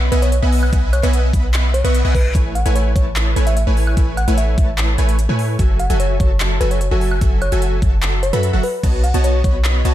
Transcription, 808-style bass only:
0.12 B1
0.43 B1
0.73 B1
1.03 B1
1.33 B1
1.84 B1
2.05 B1
2.35 A1
2.66 A1
2.96 A1
3.36 A1
3.67 A1
3.97 A1
4.28 A1
4.58 A1
4.98 A1
5.29 A2
5.59 F#1
5.90 F#1
6.20 F#1
6.61 F#1
6.91 F#1
7.21 F#1
7.52 F#1
7.82 F#1
8.33 F#2
8.53 F#1
8.84 B1
9.14 B1
9.44 B1
9.85 B1

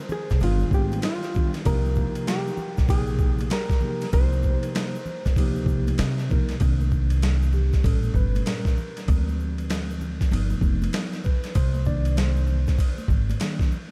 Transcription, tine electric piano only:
0.42 D#3 G3 B3 D4 F4
1.34 D#3 G3 B3 D4 F4
1.65 C3 F3 A#3 D4 G4
1.74 D#4
2.88 C3 F3 A#3 D#4 G5
3.82 C3 F3 A#3 D#4 G4
4.12 C3 F3 A#3 D4 G4
4.21 D#4
5.36 C3 F3 A#3 D#4 G4
6.30 C3 F3 A#3 D#4 A#4
6.60 D#3 A#3 D4
7.54 G4
7.84 A#2 G3 C#4 A4
8.16 B4
8.46 A#4
9.07 F3 G#3 C4
10.31 F3 B3 D#4
11.25 B4
11.55 C5
11.86 D#3 A#3 D4 D5
12.17 C5
13.41 D#3 A#3 D4

